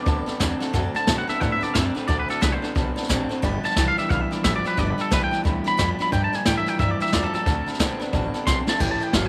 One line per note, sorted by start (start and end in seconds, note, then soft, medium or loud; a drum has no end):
0.00 0.58 D5 loud
0.05 0.26 D2 medium
0.05 0.37 D3 medium
0.05 0.27 F#3 medium
0.05 0.38 B3 loud
0.05 0.28 C4 medium
0.05 0.27 D4 medium
0.05 0.25 A4 medium
0.05 0.18 D5 loud
0.05 0.19 F#5 loud
0.05 0.19 A5 loud
0.05 kick loud
0.05 snare soft
0.26 0.40 C4 medium
0.26 0.40 D4 medium
0.26 0.40 A4 medium
0.26 0.35 D5 medium
0.26 0.35 F#5 medium
0.26 0.36 A5 loud
0.26 muted upright bass stroke medium
0.26 snare soft
0.39 0.60 E2 loud
0.39 0.61 D3 medium
0.39 0.59 D3 medium
0.39 0.61 F#3 medium
0.39 0.59 C4 medium
0.39 0.61 C4 loud
0.39 0.61 D4 loud
0.39 0.59 A4 medium
0.39 0.52 D5 medium
0.39 0.53 F#5 medium
0.39 0.53 A5 loud
0.39 kick medium
0.39 snare loud
0.39 hi-hat pedal medium
0.60 0.72 D3 medium
0.60 0.73 C4 medium
0.60 0.74 D4 medium
0.60 0.74 A4 medium
0.60 0.68 D5 medium
0.60 0.69 F#5 medium
0.60 0.69 A5 medium
0.60 snare soft
0.64 0.73 C4 medium
0.73 0.93 F#2 loud
0.73 1.05 D3 medium
0.73 0.94 D3 medium
0.73 0.95 F#3 loud
0.73 1.05 A3 loud
0.73 0.95 C4 loud
0.73 0.95 D4 medium
0.73 0.93 A4 medium
0.73 0.86 D5 loud
0.73 0.86 F#5 loud
0.73 0.87 A5 loud
0.73 kick loud
0.73 snare soft
0.93 1.08 D4 medium
0.93 1.08 A4 medium
0.93 1.02 D5 medium
0.93 1.02 F#5 medium
0.93 1.18 A5 loud
0.93 1.03 B5 medium
0.93 muted upright bass stroke medium
0.93 snare soft
0.98 1.07 C4 medium
1.07 1.28 B2 medium
1.07 1.28 D3 medium
1.07 1.26 D3 medium
1.07 1.28 F#3 medium
1.07 1.26 B3 medium
1.07 1.29 C4 medium
1.07 1.28 D4 medium
1.07 1.26 A4 medium
1.07 1.20 A5 medium
1.07 kick medium
1.07 snare loud
1.07 hi-hat pedal loud
1.18 1.29 F#5 medium
1.27 1.40 D3 medium
1.27 1.40 B3 medium
1.27 1.42 D4 medium
1.27 1.41 A4 medium
1.27 1.35 D5 medium
1.27 1.40 E5 medium
1.27 1.36 F#5 medium
1.27 1.36 A5 medium
1.27 muted upright bass stroke medium
1.27 snare soft
1.31 1.41 C4 soft
1.40 1.61 A2 medium
1.40 1.72 D3 medium
1.40 1.62 F#3 medium
1.40 1.72 B3 medium
1.40 1.62 C4 medium
1.40 1.61 D4 medium
1.40 1.53 D5 loud
1.40 1.52 F#5 medium
1.40 1.54 F#5 medium
1.40 1.54 A5 loud
1.40 kick loud
1.40 snare soft
1.44 1.59 A4 medium
1.52 1.63 E5 medium
1.61 1.74 C4 soft
1.61 1.75 D4 medium
1.61 1.74 A4 medium
1.61 1.69 D5 medium
1.61 1.74 D5 medium
1.61 1.70 F#5 medium
1.61 1.70 A5 medium
1.61 muted upright bass stroke medium
1.61 snare soft
1.74 1.95 F#2 loud
1.74 1.95 D3 medium
1.74 1.94 D3 medium
1.74 1.96 F#3 medium
1.74 1.94 C4 medium
1.74 1.96 C4 medium
1.74 1.95 D4 loud
1.74 1.93 A4 loud
1.74 1.85 E5 medium
1.74 1.88 A5 medium
1.74 kick loud
1.74 snare loud
1.74 hi-hat pedal medium
1.85 1.96 D5 medium
1.94 2.07 D3 medium
1.94 2.08 C4 medium
1.94 2.08 C4 soft
1.94 2.08 D4 medium
1.94 2.08 A4 medium
1.94 2.07 B4 medium
1.94 2.03 D5 medium
1.94 2.03 F#5 medium
1.94 2.04 B5 medium
1.94 muted upright bass stroke medium
1.94 snare soft
2.07 2.28 D2 medium
2.07 2.29 D3 medium
2.07 2.40 D3 medium
2.07 2.29 F#3 medium
2.07 2.40 A3 medium
2.07 2.30 C4 medium
2.07 2.29 D4 medium
2.07 2.27 A4 medium
2.07 2.20 D5 medium
2.07 2.19 D5 medium
2.07 2.21 F#5 medium
2.07 2.21 A5 loud
2.07 kick loud
2.07 snare soft
2.19 2.30 B4 medium
2.28 2.41 C4 soft
2.28 2.42 D4 medium
2.28 2.42 A4 medium
2.28 2.41 A4 medium
2.28 2.36 D5 medium
2.28 2.37 F#5 medium
2.28 2.37 A5 medium
2.28 snare soft
2.41 2.62 C2 medium
2.41 2.62 D3 medium
2.41 2.61 D3 medium
2.41 2.63 F#3 medium
2.41 2.61 B3 medium
2.41 2.63 C4 medium
2.41 2.63 D4 medium
2.41 2.61 A4 medium
2.41 2.52 B4 medium
2.41 2.54 D5 medium
2.41 2.55 F#5 medium
2.41 2.55 A5 medium
2.41 kick medium
2.41 snare loud
2.41 hi-hat pedal medium
2.52 2.70 C5 loud
2.62 2.74 D3 medium
2.62 2.75 B3 medium
2.62 2.75 C4 soft
2.62 2.76 D4 medium
2.62 2.75 A4 medium
2.62 2.70 D5 medium
2.62 2.71 F#5 medium
2.62 2.71 A5 medium
2.62 muted upright bass stroke medium
2.62 snare soft
2.75 2.96 B1 medium
2.75 3.07 D3 medium
2.75 2.96 F#3 medium
2.75 3.07 B3 medium
2.75 2.97 C4 medium
2.75 2.96 D4 medium
2.75 2.95 A4 medium
2.75 2.88 D5 loud
2.75 2.88 F#5 medium
2.75 2.89 A5 loud
2.75 kick loud
2.75 snare soft
2.96 3.09 C4 medium
2.96 3.09 D4 medium
2.96 3.09 A4 medium
2.96 3.04 D5 medium
2.96 3.05 F#5 medium
2.96 3.05 A5 loud
2.96 snare soft
3.03 snare soft
3.09 3.29 A1 loud
3.09 3.30 D3 medium
3.09 3.28 D3 medium
3.09 3.30 F#3 loud
3.09 3.30 C4 medium
3.09 3.28 C4 loud
3.09 3.30 D4 loud
3.09 3.28 A4 loud
3.09 3.22 F#5 medium
3.09 3.23 A5 loud
3.09 kick medium
3.09 snare loud
3.09 hi-hat pedal medium
3.29 3.42 D3 medium
3.29 3.42 C4 medium
3.29 3.43 C4 medium
3.29 3.43 D4 medium
3.29 3.43 A4 medium
3.29 3.38 D5 medium
3.29 3.38 F#5 medium
3.29 3.39 A5 medium
3.29 muted upright bass stroke medium
3.29 snare soft
3.42 3.63 G1 medium
3.42 3.63 G2 loud
3.42 3.74 G2 medium
3.42 3.64 D3 loud
3.42 3.74 D3 loud
3.42 3.64 F3 medium
3.42 3.64 B3 loud
3.42 3.63 D4 loud
3.42 3.62 G4 loud
3.42 3.55 D5 loud
3.42 3.56 G5 loud
3.42 3.56 B5 loud
3.42 kick loud
3.42 snare soft
3.63 3.76 F3 soft
3.63 3.77 B3 medium
3.63 3.77 D4 medium
3.63 3.77 G4 medium
3.63 3.71 D5 medium
3.63 3.87 A5 loud
3.63 3.72 B5 medium
3.63 muted upright bass stroke medium
3.63 snare soft
3.70 snare soft
3.76 3.96 C2 medium
3.76 3.97 G2 medium
3.76 3.95 G2 medium
3.76 3.98 D3 medium
3.76 3.96 E3 medium
3.76 3.98 F3 medium
3.76 3.98 B3 medium
3.76 3.97 D4 medium
3.76 3.96 G4 loud
3.76 3.89 D5 medium
3.76 3.90 G5 medium
3.76 3.90 B5 medium
3.76 kick medium
3.76 snare loud
3.76 hi-hat pedal medium
3.88 3.98 F5 loud
3.97 4.09 G2 medium
3.97 4.09 E3 medium
3.97 4.08 F3 soft
3.97 4.10 B3 soft
3.97 4.11 D4 medium
3.97 4.10 G4 medium
3.97 4.05 D5 medium
3.97 4.09 E5 medium
3.97 4.06 G5 medium
3.97 4.06 D6 medium
3.97 snare soft
4.09 4.30 B1 medium
4.09 4.41 G2 medium
4.09 4.42 E3 loud
4.09 4.31 F3 medium
4.09 4.31 B3 medium
4.09 4.31 D4 medium
4.09 4.30 G4 medium
4.09 4.23 D5 loud
4.09 4.21 F5 medium
4.09 4.23 G5 medium
4.09 4.24 B5 loud
4.09 kick loud
4.09 snare soft
4.21 4.32 E5 medium
4.31 4.44 F3 soft
4.31 4.44 B3 soft
4.31 4.45 D4 medium
4.31 4.44 G4 medium
4.31 4.39 D5 medium
4.31 4.43 D5 medium
4.31 4.39 G5 medium
4.31 4.39 B5 medium
4.31 snare soft
4.44 4.64 A1 loud
4.44 4.63 G2 medium
4.44 4.65 G2 medium
4.44 4.65 D3 medium
4.44 4.63 F3 loud
4.44 4.65 F3 medium
4.44 4.65 B3 medium
4.44 4.64 D4 medium
4.44 4.63 G4 medium
4.44 4.55 E5 medium
4.44 4.57 G5 medium
4.44 kick medium
4.44 snare loud
4.44 hi-hat pedal medium
4.56 4.66 D5 medium
4.64 4.76 G2 medium
4.64 4.77 F3 medium
4.64 4.77 F3 soft
4.64 4.78 B3 soft
4.64 4.78 D4 medium
4.64 4.77 G4 medium
4.64 4.79 B4 medium
4.64 4.72 D5 medium
4.64 4.73 G5 medium
4.64 4.73 B5 medium
4.64 muted upright bass stroke medium
4.64 snare soft
4.77 4.98 G1 loud
4.77 4.98 G2 medium
4.77 5.08 G2 medium
4.77 4.98 D3 medium
4.77 5.09 D3 loud
4.77 4.99 F3 medium
4.77 4.99 B3 medium
4.77 4.98 D4 medium
4.77 4.97 G4 medium
4.77 4.90 D5 medium
4.77 4.90 G5 medium
4.77 4.91 B5 loud
4.77 kick loud
4.77 snare soft
4.90 5.01 B4 medium
4.98 5.11 F3 soft
4.98 5.11 B3 soft
4.98 5.12 D4 medium
4.98 5.11 G4 medium
4.98 5.12 A4 loud
4.98 5.06 D5 medium
4.98 5.06 G5 medium
4.98 5.07 B5 medium
4.98 muted upright bass stroke medium
4.98 snare soft
5.11 5.31 B1 medium
5.11 5.32 G2 medium
5.11 5.30 G2 medium
5.11 5.32 D3 medium
5.11 5.30 E3 medium
5.11 5.32 F3 medium
5.11 5.32 B3 medium
5.11 5.31 D4 medium
5.11 5.30 G4 medium
5.11 5.23 B4 loud
5.11 5.23 D5 medium
5.11 5.24 G5 medium
5.11 5.24 B5 medium
5.11 kick medium
5.11 snare loud
5.11 hi-hat pedal medium
5.24 5.41 G5 loud
5.31 5.43 G2 medium
5.31 5.44 E3 medium
5.31 5.43 F3 soft
5.31 5.44 B3 soft
5.31 5.45 D4 medium
5.31 5.44 G4 medium
5.31 5.39 D5 medium
5.31 5.40 G5 medium
5.31 5.40 A5 medium
5.31 snare soft
5.44 5.65 D2 medium
5.44 5.76 G2 loud
5.44 5.76 E3 medium
5.44 5.65 F3 medium
5.44 5.66 B3 medium
5.44 5.65 D4 medium
5.44 5.63 G4 medium
5.44 5.57 D5 medium
5.44 5.58 G5 medium
5.44 5.58 B5 loud
5.44 kick loud
5.44 snare soft
5.64 5.77 F3 soft
5.64 5.78 B3 medium
5.64 5.78 D4 medium
5.64 5.78 G4 medium
5.64 5.73 D5 medium
5.64 5.74 G5 medium
5.64 5.74 B5 medium
5.64 5.89 B5 loud
5.64 snare soft
5.77 5.98 F2 loud
5.77 5.99 G2 medium
5.77 5.97 G2 medium
5.77 5.99 D3 medium
5.77 5.99 F3 medium
5.77 5.97 F3 medium
5.77 6.00 B3 medium
5.77 5.98 D4 loud
5.77 5.97 G4 medium
5.77 5.91 D5 medium
5.77 5.91 G5 medium
5.77 kick medium
5.77 snare loud
5.77 hi-hat pedal medium
5.99 6.11 G2 medium
5.99 6.11 F3 medium
5.99 6.12 F3 soft
5.99 6.13 B3 medium
5.99 6.12 D4 medium
5.99 6.12 G4 medium
5.99 6.07 D5 medium
5.99 6.07 G5 medium
5.99 6.08 B5 medium
5.99 6.12 B5 medium
5.99 muted upright bass stroke medium
5.99 snare soft
6.12 6.43 G2 medium
6.12 6.32 G2 medium
6.12 6.33 G2 medium
6.12 6.43 D3 medium
6.12 6.33 D3 medium
6.12 6.33 F3 medium
6.12 6.34 A#3 medium
6.12 6.33 D4 medium
6.12 6.31 G4 loud
6.12 6.24 D5 loud
6.12 6.25 G5 medium
6.12 6.23 G5 medium
6.12 6.25 A#5 loud
6.12 kick loud
6.12 snare soft
6.24 6.35 A5 medium
6.32 6.45 F3 medium
6.32 6.46 A#3 medium
6.32 6.46 D4 medium
6.32 6.46 G4 medium
6.32 6.40 D5 medium
6.32 6.41 G5 medium
6.32 6.46 G#5 medium
6.32 6.41 A#5 medium
6.32 muted upright bass stroke medium
6.32 snare soft
6.45 6.64 G2 medium
6.45 6.66 G2 medium
6.45 6.65 A2 medium
6.45 6.67 D3 medium
6.45 6.64 E3 loud
6.45 6.67 F3 medium
6.45 6.67 A#3 medium
6.45 6.66 D4 medium
6.45 6.65 G4 medium
6.45 6.58 D5 medium
6.45 6.58 G5 medium
6.45 6.57 G5 loud
6.45 6.59 A#5 medium
6.45 kick medium
6.45 snare loud
6.45 hi-hat pedal medium
6.58 6.69 E5 medium
6.66 6.78 G2 medium
6.66 6.78 E3 medium
6.66 6.78 F3 soft
6.66 6.79 A#3 soft
6.66 6.80 D4 medium
6.66 6.79 G4 medium
6.66 6.74 D5 medium
6.66 6.74 G5 medium
6.66 6.79 G5 medium
6.66 6.75 A#5 medium
6.66 muted upright bass stroke medium
6.66 snare soft
6.78 7.10 G2 medium
6.78 6.99 G2 medium
6.78 7.10 E3 medium
6.78 7.00 F3 medium
6.78 7.00 A#3 medium
6.78 7.00 D4 medium
6.78 6.99 G4 medium
6.78 6.91 D5 loud
6.78 6.91 E5 medium
6.78 6.92 G5 medium
6.78 6.92 A#5 loud
6.78 kick loud
6.78 snare soft
6.91 7.02 D5 medium
6.99 7.13 A#3 medium
6.99 7.13 D4 medium
6.99 7.13 G4 medium
6.99 7.07 D5 medium
6.99 7.13 E5 medium
6.99 7.08 G5 medium
6.99 7.08 A#5 medium
6.99 muted upright bass stroke medium
6.99 snare soft
7.03 7.13 F3 soft
7.03 snare soft
7.12 7.32 E2 loud
7.12 7.31 G2 medium
7.12 7.34 G2 medium
7.12 7.34 D3 medium
7.12 7.32 F3 medium
7.12 7.34 F3 medium
7.12 7.34 A#3 loud
7.12 7.34 D4 medium
7.12 7.32 G4 loud
7.12 7.25 D5 medium
7.12 7.24 D5 medium
7.12 7.25 G5 medium
7.12 7.26 A#5 medium
7.12 kick medium
7.12 snare loud
7.12 hi-hat pedal medium
7.24 7.34 A4 loud
7.32 7.45 G2 medium
7.32 7.45 F3 medium
7.32 7.47 A#3 medium
7.32 7.47 D4 medium
7.32 7.46 G4 medium
7.32 7.68 A4 medium
7.32 7.41 D5 medium
7.32 7.41 G5 medium
7.32 7.42 A#5 medium
7.32 muted upright bass stroke medium
7.32 snare soft
7.37 7.46 F3 soft
7.45 7.66 D2 medium
7.45 7.77 D3 medium
7.45 7.67 D3 medium
7.45 7.67 F#3 medium
7.45 7.77 A3 medium
7.45 7.68 C4 medium
7.45 7.67 D4 medium
7.45 7.65 A4 medium
7.45 7.58 D5 medium
7.45 7.59 F#5 medium
7.45 7.59 A5 loud
7.45 kick loud
7.45 snare soft
7.66 7.79 C4 soft
7.66 7.80 D4 medium
7.66 7.80 A4 medium
7.66 7.74 D5 medium
7.66 7.75 F#5 medium
7.66 7.75 B5 medium
7.66 snare soft
7.73 snare soft
7.79 7.99 B1 medium
7.79 8.00 D3 medium
7.79 7.98 D3 medium
7.79 8.01 F#3 medium
7.79 7.99 B3 medium
7.79 8.01 C4 loud
7.79 8.00 D4 loud
7.79 7.98 A4 medium
7.79 7.92 D5 medium
7.79 7.92 F#5 medium
7.79 7.93 A5 loud
7.79 kick medium
7.79 snare loud
7.79 hi-hat pedal medium
8.00 8.11 D3 medium
8.00 8.12 B3 medium
8.00 8.13 C4 medium
8.00 8.14 D4 medium
8.00 8.13 A4 medium
8.00 8.08 D5 loud
8.00 8.08 F#5 medium
8.00 8.09 A5 loud
8.00 muted upright bass stroke soft
8.00 snare soft
8.12 8.32 A1 medium
8.12 8.44 D3 medium
8.12 8.34 F#3 medium
8.12 8.44 B3 loud
8.12 8.34 C4 medium
8.12 8.35 D4 medium
8.12 8.25 D5 loud
8.12 8.26 F#5 loud
8.12 8.26 A5 loud
8.12 kick loud
8.12 snare soft
8.16 8.33 A4 medium
8.33 8.47 D4 medium
8.33 8.47 A4 medium
8.33 8.41 D5 medium
8.33 8.42 F#5 medium
8.33 8.42 A5 loud
8.33 muted upright bass stroke medium
8.33 snare soft
8.37 8.47 C4 medium
8.46 8.67 B1 loud
8.46 8.65 D3 medium
8.46 8.67 D3 medium
8.46 8.68 F#3 medium
8.46 8.65 C4 loud
8.46 8.68 C4 medium
8.46 8.67 D4 medium
8.46 8.66 A4 medium
8.46 8.58 C6 loud
8.46 kick loud
8.46 snare medium
8.46 hi-hat pedal medium
8.66 8.79 D3 medium
8.66 8.79 C4 medium
8.66 8.80 C4 soft
8.66 8.81 D4 medium
8.66 8.80 A4 medium
8.66 8.75 D5 medium
8.66 8.75 F#5 medium
8.66 8.75 A5 medium
8.66 8.81 A5 medium
8.66 snare medium
8.79 9.00 A1 medium
8.79 9.01 A2 medium
8.79 9.11 A2 medium
8.79 9.11 E3 loud
8.79 9.01 E3 medium
8.79 9.01 G3 medium
8.79 9.01 C#4 medium
8.79 9.00 E4 medium
8.79 8.99 A4 loud
8.79 8.92 C#5 loud
8.79 8.93 E5 medium
8.79 8.91 G5 medium
8.79 8.93 A5 loud
8.79 kick loud
8.79 snare soft
8.79 crash medium
8.91 9.03 A5 medium
9.00 9.14 G3 medium
9.00 9.14 C#4 medium
9.00 9.14 E4 medium
9.00 9.14 A4 medium
9.00 9.08 C#5 medium
9.00 9.09 E5 medium
9.00 9.14 G5 medium
9.00 9.09 A5 medium
9.00 muted upright bass stroke medium
9.00 snare soft
9.13 9.29 G1 medium
9.13 9.29 A2 medium
9.13 9.29 E3 medium
9.13 9.29 F#3 medium
9.13 9.29 G3 medium
9.13 9.29 C#4 medium
9.13 9.29 E4 medium
9.13 9.29 A4 medium
9.13 9.26 C#5 medium
9.13 9.26 E5 medium
9.13 9.26 F5 loud
9.13 9.27 A5 medium
9.13 kick medium
9.13 snare loud
9.13 hi-hat pedal medium